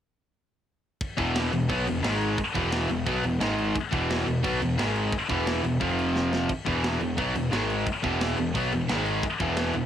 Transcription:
1.01 kick loud
1.01 crash medium
1.17 1.50 E1 medium
1.17 1.51 E2 medium
1.17 1.51 B2 medium
1.17 1.52 E3 medium
1.17 kick loud
1.17 crash medium
1.35 snare loud
1.35 crash medium
1.52 1.68 E1 medium
1.52 1.66 E2 medium
1.52 1.66 B2 medium
1.52 crash medium
1.69 1.85 B1 medium
1.69 1.85 B2 medium
1.69 1.86 F#3 medium
1.69 1.86 B3 loud
1.69 kick loud
1.69 crash medium
1.87 2.03 E1 medium
1.87 2.02 E2 medium
1.87 2.03 B2 medium
1.87 crash medium
2.02 2.35 G#1 medium
2.02 2.37 G#2 medium
2.02 2.37 D#3 medium
2.02 2.37 G#3 medium
2.02 snare loud
2.02 crash medium
2.21 crash medium
2.38 kick loud
2.38 crash medium
2.55 2.87 E1 loud
2.55 2.88 E2 medium
2.55 2.89 B2 loud
2.55 2.89 E3 medium
2.55 kick loud
2.55 crash medium
2.72 snare loud
2.72 crash medium
2.89 3.05 E1 medium
2.89 3.03 E2 medium
2.89 3.04 B2 medium
2.89 crash medium
3.06 3.22 B1 medium
3.06 3.22 B2 loud
3.06 3.23 F#3 loud
3.06 3.23 B3 medium
3.06 kick loud
3.06 crash medium
3.23 3.39 E1 medium
3.23 3.37 E2 medium
3.23 3.38 B2 medium
3.23 crash medium
3.40 3.72 G#1 medium
3.40 3.74 G#2 medium
3.40 3.75 D#3 medium
3.40 3.75 G#3 medium
3.40 snare loud
3.40 crash medium
3.58 crash medium
3.75 kick loud
3.75 crash medium
3.92 4.24 E1 medium
3.92 4.25 E2 loud
3.92 4.25 B2 loud
3.92 4.26 E3 loud
3.92 kick loud
3.92 crash medium
4.10 snare loud
4.10 crash medium
4.26 4.42 E1 medium
4.26 4.40 E2 medium
4.26 4.40 B2 medium
4.26 crash medium
4.43 4.60 B1 medium
4.43 4.60 B2 loud
4.43 4.60 F#3 loud
4.43 4.61 B3 loud
4.43 kick loud
4.43 crash medium
4.61 4.77 E1 medium
4.61 4.78 E2 medium
4.61 4.75 B2 medium
4.61 crash medium
4.78 5.10 G#1 medium
4.78 5.11 G#2 medium
4.78 5.12 D#3 loud
4.78 5.12 G#3 loud
4.78 snare loud
4.78 crash medium
4.96 crash medium
5.12 kick loud
5.12 crash medium
5.29 5.61 E1 medium
5.29 5.62 E2 medium
5.29 5.62 B2 medium
5.29 5.63 E3 loud
5.29 kick loud
5.29 crash medium
5.47 snare loud
5.47 crash medium
5.63 5.80 E1 medium
5.63 5.77 E2 medium
5.63 5.77 B2 medium
5.63 crash medium
5.80 6.45 F1 medium
5.80 6.48 F2 medium
5.80 6.49 C3 loud
5.80 6.49 F3 loud
5.80 kick medium
5.80 crash medium
5.99 crash medium
6.16 snare medium
6.33 snare medium
6.49 kick loud
6.49 crash medium
6.65 6.98 E1 medium
6.65 6.99 E2 medium
6.65 6.99 B2 medium
6.65 7.00 E3 loud
6.65 kick medium
6.65 crash medium
6.84 snare loud
6.84 crash medium
7.00 7.16 E1 medium
7.00 7.14 E2 medium
7.00 7.14 B2 medium
7.00 crash medium
7.17 7.34 B1 medium
7.17 7.34 B2 loud
7.17 7.34 F#3 loud
7.17 7.34 B3 loud
7.17 kick loud
7.17 crash medium
7.35 7.50 E1 medium
7.35 7.48 E2 medium
7.35 7.49 B2 medium
7.35 crash medium
7.51 7.83 G#1 medium
7.51 7.85 G#2 medium
7.51 7.86 D#3 loud
7.51 7.86 G#3 loud
7.51 snare loud
7.51 crash medium
7.70 crash medium
7.86 kick loud
7.86 crash medium
8.03 8.35 E1 medium
8.03 8.37 E2 medium
8.03 8.37 B2 medium
8.03 8.38 E3 loud
8.03 kick medium
8.03 crash medium
8.21 snare loud
8.21 crash medium
8.38 8.54 E1 medium
8.38 8.51 E2 medium
8.38 8.52 B2 medium
8.38 crash medium
8.55 8.71 B1 loud
8.55 8.72 B2 medium
8.55 8.72 F#3 loud
8.55 8.72 B3 loud
8.55 kick loud
8.55 crash medium
8.72 8.88 E1 medium
8.72 8.86 E2 medium
8.72 8.87 B2 medium
8.72 crash medium
8.89 9.21 G#1 medium
8.89 9.23 G#2 medium
8.89 9.23 D#3 loud
8.89 9.24 G#3 loud
8.89 snare loud
8.89 crash medium
9.06 crash medium
9.23 kick loud
9.23 crash medium
9.40 9.72 E1 medium
9.40 9.74 E2 medium
9.40 9.75 B2 loud
9.40 9.75 E3 loud
9.40 kick loud
9.40 crash medium
9.57 snare loud
9.57 crash medium
9.73 9.86 E1 loud
9.73 9.86 E2 medium
9.73 9.86 B2 medium
9.73 crash medium

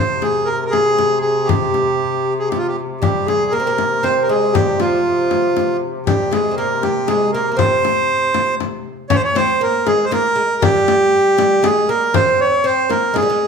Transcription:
0.00 3.02 C3 medium
0.00 0.23 C5 medium
0.22 0.49 G#4 medium
0.22 frame drum medium
0.45 0.64 A#4 medium
0.66 0.73 A#4 medium
0.71 1.19 G#4 medium
0.71 frame drum medium
0.99 frame drum medium
1.20 1.48 G#4 medium
1.45 2.34 G4 medium
1.49 frame drum medium
1.74 frame drum soft
2.39 2.49 G#4 medium
2.49 2.58 G4 medium
2.49 frame drum medium
2.58 2.67 F4 medium
2.67 2.76 G4 medium
3.00 6.07 C3 medium
3.00 3.52 G3 medium
3.00 3.27 G4 medium
3.00 frame drum medium
3.26 3.53 G#4 medium
3.26 frame drum medium
3.51 3.60 A#3 medium
3.51 4.04 A#4 medium
3.60 3.67 C4 medium
3.67 4.05 A#3 medium
3.78 frame drum medium
4.03 4.29 C4 medium
4.03 4.23 C5 medium
4.03 frame drum medium
4.22 4.29 A#4 medium
4.29 4.54 G#3 medium
4.29 4.55 G#4 medium
4.53 4.81 G3 medium
4.53 4.80 G4 medium
4.53 frame drum medium
4.80 5.77 F3 medium
4.80 5.77 F4 medium
4.80 frame drum medium
5.31 frame drum medium
5.57 frame drum medium
6.06 9.16 C3 medium
6.06 6.31 G3 medium
6.06 6.32 G4 medium
6.06 frame drum medium
6.31 6.50 G#3 medium
6.31 6.55 G#4 medium
6.31 frame drum medium
6.51 6.58 C4 soft
6.57 7.05 A#3 medium
6.57 6.83 A#4 medium
6.82 7.08 G4 medium
6.82 frame drum medium
7.07 7.34 G#3 medium
7.07 7.31 G#4 medium
7.07 frame drum medium
7.33 7.50 A#3 medium
7.33 7.56 A#4 medium
7.52 7.58 A#3 medium
7.57 8.55 C4 medium
7.57 8.55 C5 medium
7.57 frame drum medium
7.85 frame drum medium
8.34 frame drum medium
8.60 frame drum medium
9.10 9.35 C#4 medium
9.10 9.16 C#5 loud
9.10 frame drum medium
9.15 9.22 C5 medium
9.24 9.37 C#5 loud
9.35 9.62 C4 medium
9.35 9.62 C5 loud
9.35 frame drum medium
9.61 9.87 A#3 medium
9.61 9.88 A#4 medium
9.87 10.11 G#3 medium
9.87 10.05 G#4 medium
9.87 frame drum medium
10.04 10.11 C5 medium
10.11 10.35 A#3 medium
10.11 10.64 A#4 loud
10.11 frame drum medium
10.36 10.62 G#3 medium
10.62 11.37 G3 medium
10.62 11.66 G4 loud
10.62 frame drum medium
10.88 frame drum medium
11.38 11.62 G3 medium
11.38 frame drum medium
11.62 11.89 G#3 medium
11.62 11.90 G#4 medium
11.62 frame drum medium
11.89 12.15 A#3 medium
11.89 12.15 A#4 medium
12.14 12.63 C4 medium
12.14 12.40 C5 loud
12.14 frame drum medium
12.41 12.66 C#5 medium
12.64 12.90 C4 medium
12.64 12.91 C5 medium
12.89 13.13 A#3 medium
12.89 13.16 A#4 medium
12.89 frame drum medium
13.14 13.21 G#3 medium
13.14 13.47 G#4 medium
13.14 frame drum medium
13.22 13.29 G3 medium
13.30 13.47 G#3 medium

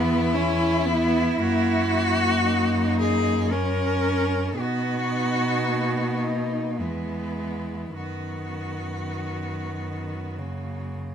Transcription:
0.00 1.35 E2 medium
0.00 0.36 B3 medium
0.00 1.41 E4 loud
0.34 0.87 C#4 medium
0.34 2.44 E4 medium
0.85 1.41 B3 medium
1.39 4.56 F#2 medium
1.39 1.90 A#3 medium
1.39 2.99 F#4 loud
1.91 3.54 A#3 medium
2.44 3.53 D#4 medium
3.00 3.53 G#4 loud
3.51 4.56 C#4 medium
3.51 4.57 C#4 medium
3.51 4.61 A#4 loud
4.57 6.82 B2 medium
4.57 5.68 B3 medium
4.57 6.81 D#4 medium
4.57 6.25 F#4 loud
5.66 6.81 A#3 medium
6.24 6.79 D#4 medium
6.80 7.96 E2 medium
6.80 7.96 G#3 medium
6.80 7.97 B3 medium
6.80 7.96 E4 medium
7.97 11.15 F#2 soft
7.97 10.40 D#3 medium
7.97 10.38 B3 soft
7.97 10.93 F#4 medium
10.37 11.15 C#3 soft
10.37 11.15 A#3 soft

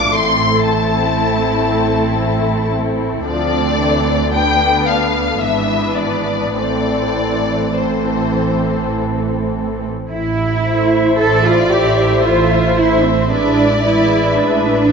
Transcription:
0.00 0.15 B1 soft
0.00 0.14 B2 soft
0.00 0.12 A3 medium
0.00 0.12 D4 medium
0.00 0.12 F4 soft
0.00 0.12 A4 medium
0.00 0.14 D6 medium
0.14 3.22 A1 medium
0.14 3.22 A2 soft
0.14 3.22 A3 soft
0.14 3.25 C4 medium
0.14 3.27 E4 medium
0.14 3.22 A4 medium
0.14 0.65 C6 medium
0.65 2.69 A5 medium
3.26 5.36 D2 medium
3.26 5.37 D2 soft
3.26 3.75 F3 soft
3.26 4.28 C4 soft
3.26 4.28 D4 soft
3.26 4.28 A4 soft
3.26 4.28 D5 medium
3.78 4.30 E3 soft
4.31 5.40 D3 soft
4.31 5.39 B3 soft
4.31 5.39 D4 medium
4.31 5.41 B4 soft
4.31 4.86 G5 medium
4.86 5.41 F5 medium
5.40 6.56 G#1 soft
5.40 6.56 G#2 soft
5.40 6.55 E3 soft
5.40 6.54 B3 soft
5.40 6.55 D4 soft
5.40 6.55 B4 soft
5.40 5.97 E5 medium
5.97 6.55 D5 medium
6.56 9.87 A1 soft
6.56 9.86 A2 soft
6.56 7.74 E3 soft
6.56 7.75 C4 soft
6.56 7.76 C4 soft
6.56 7.76 A4 soft
6.56 7.74 D5 medium
7.76 9.86 E3 soft
7.76 9.86 C4 soft
7.76 9.87 C4 soft
7.76 9.87 A4 soft
7.76 8.95 C5 soft
10.11 11.08 A1 medium
10.11 11.16 E4 medium
10.66 11.70 A3 medium
10.66 11.70 E4 medium
10.66 11.70 C5 medium
10.66 11.71 E5 medium
11.20 12.13 A1 medium
11.20 11.46 A4 medium
11.20 12.22 D5 medium
11.46 11.73 F4 medium
11.72 12.76 A3 medium
11.72 12.76 E4 medium
11.72 12.25 G4 medium
11.72 12.76 C5 medium
11.72 12.76 E5 medium
12.25 13.19 A1 medium
12.25 12.77 F4 medium
12.25 13.31 C5 medium
12.78 13.30 A3 medium
12.78 13.05 E4 medium
12.78 13.30 E4 medium
12.78 13.30 C5 medium
12.78 13.30 E5 soft
13.04 13.31 C4 medium
13.30 14.26 A1 medium
13.30 13.83 G#3 medium
13.30 13.85 D4 medium
13.30 13.83 E4 soft
13.30 13.83 B4 medium
13.30 14.36 D5 medium
13.30 13.83 E5 soft
13.84 14.89 G#3 medium
13.84 14.88 E4 soft
13.84 14.37 E4 medium
13.84 14.88 B4 soft
13.84 14.88 E5 medium
14.38 14.92 A1 medium
14.38 14.92 D4 medium
14.38 14.92 B4 medium

